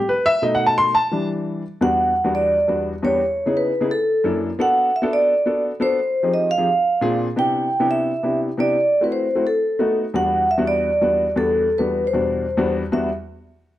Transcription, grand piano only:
0.09 0.25 B4 medium
0.26 0.42 E5 loud
0.42 0.92 B2 medium
0.42 0.92 A3 medium
0.42 0.92 D#4 medium
0.42 0.54 D#5 medium
0.55 0.66 F#5 medium
0.66 0.77 A5 medium
0.78 0.94 C6 loud
0.95 1.27 A5 medium
1.11 1.61 E3 medium
1.11 1.61 G3 soft
1.11 1.62 D4 medium
1.81 2.11 E2 medium
1.81 2.12 G3 medium
1.81 2.12 B3 medium
1.81 2.12 D4 medium
1.81 2.12 F#4 medium
2.24 2.55 E2 medium
2.24 2.55 G3 medium
2.24 2.55 B3 medium
2.24 2.55 D4 medium
2.24 2.55 F#4 medium
2.68 2.92 E2 medium
2.68 2.92 G3 medium
2.68 2.92 B3 medium
2.68 2.93 D4 medium
2.68 2.93 F#4 medium
3.02 3.20 E2 medium
3.02 3.20 G3 medium
3.02 3.20 B3 medium
3.02 3.20 D4 medium
3.02 3.21 G4 medium
3.46 3.70 C#3 medium
3.46 3.70 B3 medium
3.46 3.71 D#4 medium
3.46 3.71 E4 medium
3.46 3.71 G#4 medium
3.81 3.89 C#3 medium
3.81 3.90 B3 medium
3.81 3.90 D#4 medium
3.81 3.90 E4 medium
3.81 3.90 G#4 medium
4.24 4.48 F#2 medium
4.24 4.48 A#3 medium
4.24 4.49 D4 medium
4.24 4.49 E4 medium
4.24 4.49 A4 medium
4.59 4.89 B3 medium
4.59 4.89 D4 medium
4.59 4.90 F#4 medium
4.59 4.90 A4 medium
5.02 5.32 B3 medium
5.02 5.33 D4 medium
5.02 5.33 F#4 medium
5.02 5.33 A4 medium
5.46 5.70 B3 medium
5.46 5.70 D4 medium
5.46 5.70 F#4 medium
5.46 5.71 A4 medium
5.80 5.98 B3 medium
5.80 5.98 D4 medium
5.80 5.98 F#4 medium
5.80 5.98 A4 medium
6.23 6.48 F3 medium
6.23 6.48 C4 medium
6.23 6.48 D#4 medium
6.23 6.48 G4 medium
6.23 6.48 G#4 medium
6.58 6.67 F3 medium
6.58 6.67 C4 medium
6.58 6.67 D#4 medium
6.58 6.67 G4 medium
6.58 6.67 G#4 medium
7.01 7.26 A#2 medium
7.01 7.26 C4 medium
7.01 7.26 D4 medium
7.01 7.26 F4 medium
7.01 7.27 G#4 medium
7.36 7.67 C3 medium
7.36 7.67 B3 medium
7.36 7.67 D4 medium
7.36 7.67 E4 medium
7.36 7.67 G4 medium
7.80 8.10 C3 medium
7.80 8.10 B3 medium
7.80 8.11 D4 medium
7.80 8.11 E4 medium
7.80 8.11 G4 medium
8.23 8.48 C3 medium
8.23 8.48 B3 medium
8.23 8.48 D4 medium
8.23 8.48 E4 medium
8.23 8.48 G4 medium
8.57 8.75 C3 medium
8.57 8.75 B3 medium
8.57 8.76 D4 medium
8.57 8.76 E4 medium
8.57 8.76 G4 medium
9.01 9.26 A3 medium
9.01 9.26 C4 medium
9.01 9.26 E4 medium
9.01 9.26 F#4 medium
9.35 9.45 A3 medium
9.35 9.45 C4 medium
9.35 9.45 E4 medium
9.35 9.45 F#4 medium
9.79 10.04 A3 medium
9.79 10.04 B3 medium
9.79 10.04 D#4 medium
9.79 10.04 F#4 medium
10.14 10.45 E2 medium
10.14 10.45 G3 medium
10.14 10.45 B3 medium
10.14 10.45 D4 medium
10.14 10.45 F#4 medium
10.57 10.88 E2 medium
10.57 10.88 G3 medium
10.57 10.88 B3 medium
10.57 10.89 D4 medium
10.57 10.89 F#4 medium
11.01 11.26 E2 medium
11.01 11.26 G3 medium
11.01 11.26 B3 medium
11.01 11.26 D4 medium
11.01 11.26 F#4 medium
11.36 11.66 E2 medium
11.36 11.66 G3 medium
11.36 11.66 B3 medium
11.36 11.67 D4 medium
11.36 11.67 F#4 medium
11.79 12.03 E2 medium
11.79 12.03 G3 medium
11.79 12.04 B3 medium
11.79 12.04 D4 medium
11.79 12.04 F#4 medium
12.13 12.44 E2 medium
12.13 12.44 B2 medium
12.13 12.44 G3 medium
12.13 12.44 D4 medium
12.13 12.45 F#4 medium
12.57 12.82 E2 medium
12.57 12.82 G3 medium
12.57 12.82 B3 medium
12.57 12.82 D4 medium
12.57 12.82 F#4 medium
12.92 13.08 E2 medium
12.92 13.08 G3 medium
12.92 13.08 B3 medium
12.92 13.08 D4 medium
12.92 13.08 F#4 medium

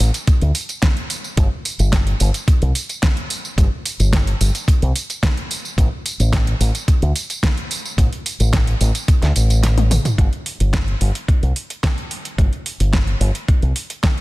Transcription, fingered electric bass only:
0.42 0.50 D2 medium
1.37 1.47 G1 loud
1.79 2.13 G1 medium
2.20 2.29 G1 medium
2.48 muted fingered electric bass stroke soft
2.62 2.71 C2 medium
3.58 3.67 G1 loud
3.99 4.33 G1 medium
4.40 4.50 G1 medium
4.82 4.91 C2 loud
5.78 5.87 A1 loud
6.20 6.53 A1 medium
6.60 6.70 A1 medium
6.88 muted fingered electric bass stroke soft
7.02 7.11 D2 medium
7.98 8.07 A1 loud
8.40 8.73 A1 medium
8.81 8.90 A1 loud
9.22 9.31 D2 loud
9.36 9.97 A1 medium
10.18 10.28 G1 medium
10.60 10.94 G1 medium
11.01 11.10 G1 medium
11.28 muted fingered electric bass stroke soft
11.43 11.51 C2 medium
12.38 12.48 G1 loud
12.80 13.14 G1 medium
13.20 13.30 G1 medium
13.62 13.71 C2 medium

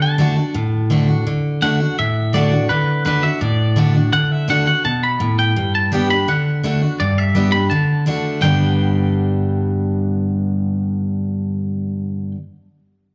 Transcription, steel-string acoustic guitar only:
0.00 0.17 D3 medium
0.18 0.36 D3 medium
0.18 0.36 A3 medium
0.18 0.37 D4 loud
0.18 0.35 F#4 loud
0.36 0.55 D4 medium
0.36 0.54 F#4 medium
0.54 1.23 A2 medium
0.90 1.08 D3 medium
0.90 1.08 A3 medium
0.90 1.08 D4 medium
0.90 1.07 F#4 medium
1.08 1.27 D4 soft
1.08 1.26 F#4 medium
1.27 1.60 D3 medium
1.62 1.79 D3 medium
1.62 1.80 A3 loud
1.62 1.80 D4 loud
1.62 1.79 F#4 loud
1.80 1.99 D4 medium
1.80 1.97 F#4 medium
1.99 2.67 A2 medium
2.33 2.51 D3 medium
2.33 2.51 A3 loud
2.33 2.52 D4 loud
2.33 2.50 F#4 loud
2.51 2.70 D4 soft
2.51 2.69 F#4 medium
2.70 3.04 D3 medium
3.05 3.22 D3 medium
3.05 3.23 A3 medium
3.05 3.23 D4 loud
3.05 3.21 F#4 loud
3.23 3.42 D4 medium
3.23 3.40 F#4 medium
3.41 4.09 A2 medium
3.76 3.94 D3 medium
3.76 3.94 A3 medium
3.76 3.95 D4 loud
3.76 3.93 F#4 loud
3.94 4.13 D4 medium
3.94 4.12 F#4 medium
4.13 4.46 D3 medium
4.48 4.66 D3 loud
4.48 4.66 A3 loud
4.48 4.66 D4 medium
4.48 4.64 F#4 medium
4.66 4.85 D4 soft
4.66 4.83 F#4 medium
4.85 5.19 B2 medium
5.20 5.54 A2 loud
5.56 6.24 G2 medium
5.92 6.09 G3 medium
5.92 6.09 B3 loud
5.92 6.10 D4 medium
5.92 6.09 G4 loud
6.10 6.28 D4 medium
6.10 6.27 G4 medium
6.28 6.62 D3 medium
6.63 6.81 D3 medium
6.63 6.81 A3 loud
6.63 6.82 D4 medium
6.63 6.80 F#4 loud
6.82 7.00 D4 soft
6.82 6.99 F#4 medium
7.00 7.68 G2 medium
7.35 7.52 G3 medium
7.35 7.53 B3 medium
7.35 7.53 D4 loud
7.35 7.52 G4 loud
7.53 7.71 D4 soft
7.53 7.70 G4 medium
7.71 8.05 D3 medium
8.06 8.40 D3 medium
8.06 8.41 A3 medium
8.06 8.41 D4 medium
8.06 8.42 F#4 medium
8.41 12.34 G2 medium
8.41 12.35 D3 loud
8.41 12.36 G3 medium
8.41 12.37 B3 medium
8.41 12.37 D4 medium
8.41 12.38 G4 medium

